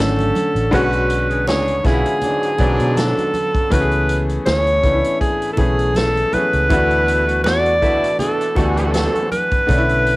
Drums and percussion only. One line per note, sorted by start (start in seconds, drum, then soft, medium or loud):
0.00 snare loud
0.19 closed hi-hat soft
0.19 high conga medium
0.35 closed hi-hat medium
0.35 high conga medium
0.56 closed hi-hat medium
0.73 kick loud
0.73 closed hi-hat loud
0.73 muted conga medium
0.93 closed hi-hat soft
1.10 closed hi-hat loud
1.30 closed hi-hat soft
1.47 snare loud
1.47 closed hi-hat medium
1.47 high conga medium
1.68 closed hi-hat soft
1.84 kick medium
1.84 snare soft
1.84 closed hi-hat medium
2.06 closed hi-hat medium
2.21 closed hi-hat medium
2.21 low conga medium
2.43 closed hi-hat medium
2.58 kick medium
2.58 closed hi-hat medium
2.58 muted conga medium
2.80 closed hi-hat medium
2.97 snare loud
2.97 closed hi-hat loud
2.97 high conga medium
3.18 closed hi-hat soft
3.18 high conga medium
3.34 closed hi-hat medium
3.34 high conga medium
3.54 kick medium
3.54 closed hi-hat soft
3.71 kick loud
3.71 closed hi-hat loud
3.71 muted conga medium
3.91 closed hi-hat soft
4.09 closed hi-hat medium
4.29 closed hi-hat soft
4.46 snare loud
4.46 closed hi-hat medium
4.46 high conga medium
4.67 closed hi-hat soft
4.83 kick medium
4.83 closed hi-hat medium
5.04 closed hi-hat medium
5.21 kick medium
5.21 closed hi-hat medium
5.42 closed hi-hat soft
5.57 kick medium
5.57 closed hi-hat medium
5.57 muted conga medium
5.57 low conga medium
5.79 closed hi-hat soft
5.95 snare loud
5.95 closed hi-hat loud
5.95 high conga medium
6.16 closed hi-hat soft
6.16 high conga medium
6.33 closed hi-hat medium
6.33 high conga medium
6.53 closed hi-hat medium
6.70 kick loud
6.70 closed hi-hat loud
6.70 muted conga medium
6.91 closed hi-hat soft
7.08 closed hi-hat medium
7.29 closed hi-hat soft
7.44 snare loud
7.44 closed hi-hat loud
7.44 high conga medium
7.66 closed hi-hat medium
7.82 kick loud
7.82 closed hi-hat medium
8.04 closed hi-hat medium
8.19 closed hi-hat medium
8.19 low conga medium
8.41 closed hi-hat medium
8.56 kick medium
8.56 closed hi-hat medium
8.56 muted conga medium
8.77 closed hi-hat medium
8.94 snare loud
8.94 closed hi-hat loud
8.94 high conga medium
9.15 closed hi-hat soft
9.15 high conga medium
9.32 closed hi-hat medium
9.32 high conga medium
9.51 kick medium
9.51 closed hi-hat soft
9.69 kick loud
9.69 closed hi-hat loud
9.69 muted conga medium
9.89 closed hi-hat soft
10.06 closed hi-hat medium
10.06 muted conga soft